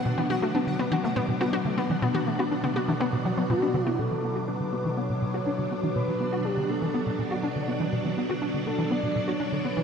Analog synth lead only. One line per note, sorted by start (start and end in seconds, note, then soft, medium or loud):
3.50 3.87 F#4 loud
3.87 4.00 E4 loud
3.99 4.49 A4 loud
4.48 4.98 B4 loud
4.97 5.95 C#5 loud
5.95 6.46 B4 loud
6.45 6.71 G4 medium
6.69 7.68 A4 medium
8.66 8.92 A4 medium
8.91 9.29 D5 loud
9.28 9.66 C#5 loud
9.65 9.83 B4 medium